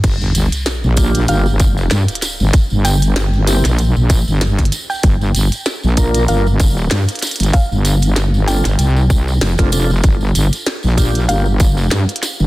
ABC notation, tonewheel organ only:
X:1
M:4/4
L:1/16
Q:"Swing 16ths" 1/4=96
K:Gm
V:1 name="Tonewheel organ"
z6 [B,DFG]2 [B,DFG] z6 z | z6 [B,C=EG] z8 z | z6 [B,DFB]2 [B,DFB] z6 z | z6 [CDFA] z6 [CDFA] [CDFA] z |
z6 [B,DFG]2 [B,DFG] z6 z |]